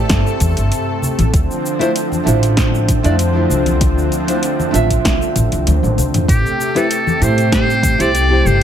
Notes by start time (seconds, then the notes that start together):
Already playing: C3 A3 C4 E4 G4 A4 D5
0.09 G1, kick, snare, closed hi-hat, shaker
0.27 shaker
0.40 E2, kick, closed hi-hat, high conga, shaker
0.56 G1, closed hi-hat, shaker
0.72 closed hi-hat, shaker
1.02 low conga, shaker
1.18 A1, closed hi-hat, high conga, shaker
1.33 D2 D3 F3 C4, kick, closed hi-hat, shaker
1.51 shaker
1.66 shaker
1.79 A3 D4 E4 F4 C5, closed hi-hat, shaker
1.96 closed hi-hat, shaker
2.12 high conga, shaker
2.24 A1 A3 D4 E4 F4, closed hi-hat
2.28 C5, shaker
2.43 closed hi-hat, shaker
2.57 kick, snare, closed hi-hat, shaker
2.75 shaker
2.88 kick, closed hi-hat, high conga, shaker
3.03 F2 A3 D4 E4 F4 D5, closed hi-hat, shaker
3.19 closed hi-hat, shaker
3.33 A3 D4 E4 F4
3.37 C5
3.50 C2, low conga, shaker
3.66 closed hi-hat, high conga, shaker
3.81 kick, closed hi-hat, shaker
3.97 D2, shaker
4.12 closed hi-hat, shaker
4.27 A3 D4 E4 F4 C5, closed hi-hat, shaker
4.43 closed hi-hat, shaker
4.60 high conga, shaker
4.71 A1 A3 D4 F4, closed hi-hat, shaker
4.75 E5
4.90 kick, closed hi-hat, shaker
5.05 C2, kick, snare, closed hi-hat, shaker
5.22 shaker
5.36 A1, kick, closed hi-hat, high conga, shaker
5.52 C2, closed hi-hat, shaker
5.67 D2, closed hi-hat, high tom, shaker
5.83 A1, high tom, shaker
5.98 D2, closed hi-hat, low conga, shaker
6.14 closed hi-hat, mid tom, high conga, shaker
6.28 A1 C3 A3 G4, kick, closed hi-hat, shaker
6.46 shaker
6.61 shaker
6.75 A3 C4 E4 G4 A4 B4, closed hi-hat, shaker
6.91 closed hi-hat, shaker
7.07 high conga, shaker
7.20 A2 A3 C4 E4 G4 C5, closed hi-hat, shaker
7.24 C5
7.38 closed hi-hat, shaker
7.52 C5, kick, snare, closed hi-hat, shaker
7.70 shaker
7.83 kick, closed hi-hat, high conga, shaker
7.98 C2 A3 C4 E4 G4 C5 D5, closed hi-hat, shaker
8.15 closed hi-hat, shaker
8.28 A3 C4 E4 G4
8.32 C5
8.45 G1 C5, low conga, shaker